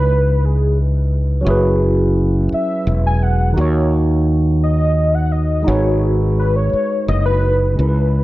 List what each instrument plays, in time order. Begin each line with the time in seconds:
Already playing: fretless electric bass C#2, tine electric piano C#3 G#3 D#4 E4 B4, soft synth lead B4
0.45 soft synth lead G#4
1.41 tine electric piano F#3 C#4 F#4
1.46 fretless electric bass F#1, tine electric piano E4 G#4
1.50 tine electric piano B4
2.52 soft synth lead E5, muted fretless electric bass stroke
2.87 fretless electric bass E1
3.06 soft synth lead G#5
3.23 soft synth lead F#5
3.52 tine electric piano D#3 D#4
3.57 fretless electric bass D#2, tine electric piano F#4 A#4, soft synth lead C#5
3.61 tine electric piano C#5
4.63 soft synth lead D#5
5.15 soft synth lead F#5
5.32 soft synth lead D#5
5.62 tine electric piano G#3 D#4
5.66 fretless electric bass G#1, tine electric piano F#4 G#4 B4, soft synth lead C#5
5.72 tine electric piano C#5
6.39 soft synth lead B4
6.56 soft synth lead C#5
6.73 muted fretless electric bass stroke
7.08 fretless electric bass F#1, soft synth lead D#5
7.26 soft synth lead B4
7.73 tine electric piano C#3 G#3
7.77 fretless electric bass C#2, tine electric piano C#4 E4, soft synth lead B4
7.82 tine electric piano A#4
7.89 tine electric piano B4